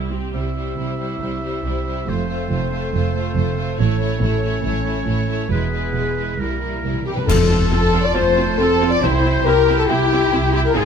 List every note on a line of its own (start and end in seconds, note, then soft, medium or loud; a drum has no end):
0.00 0.11 C2 medium
0.00 0.10 G3 soft
0.00 0.10 E4 soft
0.10 0.33 C4 soft
0.10 0.33 G4 soft
0.33 0.71 C2 soft
0.33 0.70 C3 soft
0.33 0.54 G3 soft
0.33 3.76 C4 soft
0.33 2.04 E4 soft
0.33 0.55 E4 soft
0.33 2.10 G4 soft
0.33 0.55 C5 soft
0.33 2.10 E5 soft
0.56 0.77 G3 soft
0.56 0.77 E4 soft
0.56 0.77 C5 soft
0.77 1.14 C2 soft
0.77 1.14 C3 soft
0.77 0.97 G3 soft
0.77 0.98 E4 soft
0.77 0.99 C5 soft
0.98 1.20 G3 soft
0.98 1.21 E4 soft
0.98 1.19 C5 soft
1.20 1.58 C2 soft
1.20 1.57 C3 soft
1.20 1.41 G3 soft
1.20 1.43 E4 soft
1.20 1.40 C5 soft
1.42 1.63 G3 soft
1.42 1.64 E4 soft
1.42 1.64 C5 soft
1.64 2.01 C2 soft
1.64 2.00 C3 soft
1.64 1.84 G3 soft
1.64 1.86 E4 soft
1.64 1.85 C5 soft
1.85 2.07 G3 soft
1.85 2.08 E4 soft
1.85 2.06 C5 soft
2.05 2.44 F1 medium
2.05 2.43 F2 medium
2.05 2.27 A3 soft
2.05 2.28 F4 soft
2.05 5.52 A4 medium
2.05 2.26 C5 soft
2.05 3.79 C5 soft
2.10 5.48 A4 medium
2.27 2.48 A3 soft
2.27 2.50 F4 soft
2.27 2.49 C5 soft
2.49 2.86 F1 medium
2.49 2.87 F2 soft
2.49 2.70 A3 soft
2.49 2.71 F4 soft
2.49 2.71 C5 soft
2.71 2.93 A3 soft
2.71 2.93 F4 soft
2.71 2.93 C5 soft
2.93 3.30 F1 medium
2.93 3.29 F2 medium
2.93 3.13 A3 soft
2.93 3.16 F4 soft
2.93 3.12 C5 medium
3.13 3.35 A3 soft
3.13 3.35 C5 soft
3.18 3.37 F4 soft
3.36 3.72 F1 medium
3.36 3.72 F2 medium
3.36 3.56 A3 soft
3.36 3.56 F4 soft
3.36 3.58 C5 soft
3.57 3.79 A3 soft
3.57 3.78 F4 soft
3.57 3.79 C5 soft
3.79 4.16 A1 medium
3.79 4.15 A2 medium
3.79 4.00 A3 medium
3.79 5.48 C#4 medium
3.79 4.00 E4 medium
3.79 4.00 C#5 medium
3.79 5.48 C#5 medium
4.01 4.21 A3 soft
4.01 4.21 E4 soft
4.01 4.22 C#5 soft
4.22 4.58 A1 medium
4.22 4.58 A2 medium
4.22 4.42 A3 soft
4.22 4.43 E4 soft
4.22 4.43 C#5 soft
4.43 4.63 A3 soft
4.43 4.62 E4 soft
4.43 4.63 C#5 soft
4.63 5.01 A1 medium
4.63 5.00 A2 medium
4.63 4.84 A3 medium
4.63 4.85 E4 soft
4.63 4.86 C#5 medium
4.86 5.06 A3 soft
4.86 5.05 E4 soft
4.86 5.08 C#5 soft
5.06 5.44 A1 medium
5.06 5.43 A2 medium
5.06 5.27 A3 soft
5.06 5.26 E4 soft
5.06 5.29 C#5 soft
5.27 5.50 A3 soft
5.27 5.49 E4 soft
5.27 5.51 C#5 soft
5.50 5.87 E1 medium
5.50 5.87 E2 medium
5.50 5.71 G#3 soft
5.50 6.35 B3 medium
5.50 5.72 E4 soft
5.50 6.35 G#4 medium
5.50 6.38 G#4 medium
5.50 5.72 B4 soft
5.50 6.42 B4 soft
5.72 5.94 G#3 soft
5.72 5.92 E4 soft
5.72 5.94 B4 soft
5.93 6.32 E1 medium
5.93 6.31 E2 soft
5.93 6.17 G#3 soft
5.93 6.16 E4 soft
5.93 6.16 B4 soft
6.17 6.39 G#3 soft
6.17 6.39 E4 soft
6.17 6.39 B4 soft
6.38 6.76 C2 soft
6.38 6.77 C2 soft
6.38 6.62 G3 soft
6.38 7.02 A#3 soft
6.38 6.58 E4 soft
6.38 7.03 E4 soft
6.38 7.05 E4 soft
6.38 6.61 A#4 soft
6.38 7.07 A#4 soft
6.48 6.55 C3 soft
6.56 6.62 C3 soft
6.56 6.82 E4 soft
6.62 6.70 C3 soft
6.62 6.83 G3 soft
6.62 6.83 A#4 soft
6.71 6.77 C3 soft
6.78 6.85 C3 soft
6.84 7.21 C2 soft
6.84 6.93 C3 soft
6.84 7.05 G3 soft
6.84 7.06 E4 soft
6.84 7.05 A#4 soft
6.94 6.99 C3 soft
7.00 7.07 C3 medium
7.06 7.16 C3 medium
7.06 7.28 G3 soft
7.06 7.29 E4 soft
7.06 7.10 G4 medium
7.06 7.11 G4 medium
7.06 7.17 G4 medium
7.06 7.28 A#4 soft
7.16 7.24 C3 medium
7.16 7.21 B4 medium
7.16 7.28 B4 medium
7.16 7.31 B4 medium
7.16 7.29 B4 medium
7.27 7.90 F2 loud
7.27 7.67 F2 medium
7.27 7.37 C4 medium
7.27 7.36 F4 medium
7.27 8.99 F4 medium
7.27 7.58 A4 loud
7.27 7.71 A4 medium
7.27 7.73 A4 medium
7.27 7.72 A4 medium
7.27 9.00 A5 medium
7.27 10.46 C6 medium
7.27 concert bass drum medium
7.27 crash medium
7.49 7.57 C4 medium
7.49 7.58 F4 medium
7.71 8.11 F2 medium
7.71 7.79 C4 medium
7.71 7.79 F4 medium
7.71 8.04 A4 loud
7.71 8.04 A4 medium
7.71 8.08 A4 medium
7.71 8.05 A4 medium
7.93 8.01 C4 medium
7.93 8.01 F4 medium
8.05 8.16 D5 medium
8.05 8.16 D5 loud
8.05 8.16 D5 medium
8.05 8.18 D5 medium
8.13 8.54 F2 medium
8.13 8.56 A3 medium
8.13 8.21 C4 medium
8.13 8.21 F4 medium
8.13 8.59 C5 medium
8.17 8.59 C5 medium
8.36 8.44 C4 medium
8.36 8.45 F4 medium
8.58 8.98 F2 medium
8.58 9.03 C4 medium
8.58 8.68 C4 medium
8.58 8.67 F4 medium
8.58 8.91 A4 loud
8.58 8.91 A4 medium
8.58 8.92 A4 medium
8.58 8.94 A4 medium
8.81 8.89 C4 medium
8.81 8.89 F4 medium
8.91 9.02 D5 medium
8.91 9.03 D5 medium
9.02 9.41 C2 loud
9.02 9.64 C3 loud
9.02 9.11 C4 medium
9.02 9.10 E4 medium
9.02 9.46 E4 medium
9.02 10.74 E4 medium
9.02 9.45 C5 medium
9.02 9.46 C5 loud
9.02 9.46 C5 medium
9.02 9.49 C5 medium
9.02 10.73 G5 medium
9.25 9.33 C4 medium
9.25 9.33 E4 medium
9.44 9.84 C2 medium
9.44 9.54 C4 medium
9.44 9.54 E4 medium
9.44 9.88 G4 medium
9.44 9.77 A#4 medium
9.44 9.78 A#4 loud
9.44 9.79 A#4 medium
9.44 9.78 A#4 loud
9.68 9.76 C4 medium
9.68 9.76 E4 medium
9.78 9.89 A4 medium
9.78 9.83 A4 medium
9.78 9.84 A4 medium
9.88 10.28 C2 medium
9.88 9.97 C4 medium
9.88 10.76 E4 medium
9.88 9.97 E4 medium
9.88 10.52 G4 loud
9.88 10.54 G4 loud
9.88 10.54 G4 medium
9.88 10.55 G4 medium
10.11 10.19 C4 medium
10.11 10.19 E4 medium
10.32 10.72 C2 medium
10.32 10.41 C4 medium
10.32 10.40 E4 medium
10.53 10.61 C4 medium
10.53 10.61 E4 medium
10.53 10.58 G4 medium
10.53 10.66 G4 medium
10.53 10.60 G4 medium
10.57 10.61 G4 medium
10.65 10.69 A#4 medium
10.65 10.76 A#4 medium
10.65 10.77 A#4 medium
10.69 10.78 A#4 medium
10.74 10.85 G#1 loud
10.74 10.82 C4 medium
10.74 10.82 D#4 medium
10.74 10.85 D#4 medium
10.74 10.85 F4 medium
10.74 10.85 G#4 loud
10.74 10.85 G#4 medium
10.74 10.85 G#5 medium
10.74 10.85 C6 medium